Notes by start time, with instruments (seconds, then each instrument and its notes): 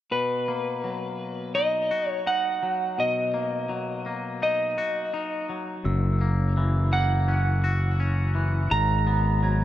0.11 clean electric guitar B2, electric slide guitar B4
0.48 clean electric guitar A#3
0.84 clean electric guitar F#3
1.55 clean electric guitar D#4, electric slide guitar D#5
1.91 clean electric guitar F#4
2.10 electric slide guitar C#5
2.26 clean electric guitar D#4, electric slide guitar F#5
2.63 clean electric guitar F#3
2.98 clean electric guitar B2, electric slide guitar D#5
3.34 clean electric guitar A#3
3.69 clean electric guitar F#3
4.06 clean electric guitar A#3
4.42 clean electric guitar D#4, electric slide guitar D#5
4.78 clean electric guitar F#4
5.14 clean electric guitar D#4
5.49 clean electric guitar F#3
5.84 fingered electric bass F#1, clean electric guitar F#2, glockenspiel E6
6.21 clean electric guitar A#3
6.57 clean electric guitar E3, glockenspiel E6
6.92 clean electric guitar A#3, electric slide guitar F#5
7.28 clean electric guitar C#4, glockenspiel F#6
7.64 clean electric guitar F#4, glockenspiel E6
8.00 clean electric guitar C#4
8.35 clean electric guitar E3, glockenspiel F#6
8.71 fingered electric bass G#1, clean electric guitar G#2, electric slide guitar A#5, glockenspiel A#6
9.07 clean electric guitar B3
9.43 clean electric guitar F#3, glockenspiel G#6